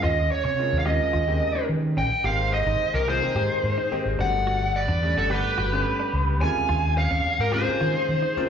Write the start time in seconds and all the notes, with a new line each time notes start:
Already playing: C#3 G#3 A#3 C4 F4
0.03 D#2 F4 D#5
0.32 C#5
0.45 C3 C#4 C#5
0.59 C#3 G#3 A#3 C4 F4
0.73 D#2
0.79 F5
0.86 C#3 G#3 A#3 C4 F4 G4 D#5
1.13 D#2 F4
1.28 C#3 G#3 A#3 C4 G4
1.55 D#4
1.69 D#3
1.97 A#1 C#4 D#5 G5
2.11 muted fretless electric bass stroke
2.24 G#1 D#3 G#3 A#3 C4 G4 C5 F5
2.54 C5 D#5
2.66 G#1 D#4
2.94 C2 G4 A#4
3.08 D#3 G#3 A#3 C4 F4 G#4 C5
3.22 D#3 G#3 A#3 C4 G5, muted fretless electric bass stroke
3.35 G#2 G4
3.63 G#2
3.78 D#4
3.92 D#3 G#3 A#3 C4 G4, muted fretless electric bass stroke
4.06 G#1
4.19 G1 D3 G3 A3 B3 D4 F#4 D5 F#5
4.47 F#4
4.76 B4 D5
4.88 E2 D4
5.03 D3 G3 A3 B3 C#4
5.16 G1 F#4 A4
5.30 D3 G3 A3 B3 G4 B4 F#5
5.58 G1 F#4
5.72 D3 G3 A3 B3 C#4
6.00 D4
6.13 C#2
6.40 D#2 C3 C#3 G#3 A#3 C#4 F4 F5 G#5
6.55 muted fretless electric bass stroke
6.69 D#2 F4
6.98 C#5 F5
7.11 D#2 C#4
7.26 muted fretless electric bass stroke
7.39 G#2 G4 A#4
7.52 C#3 G#3 A#3 C4 F4 G4 G#4 C5
7.66 C#3 G#3 A#3 C4 F4, muted fretless electric bass stroke
7.81 D#3 F4
8.09 D#3
8.22 D#4
8.37 C#3 G#3 A#3 C4 F4, muted fretless electric bass stroke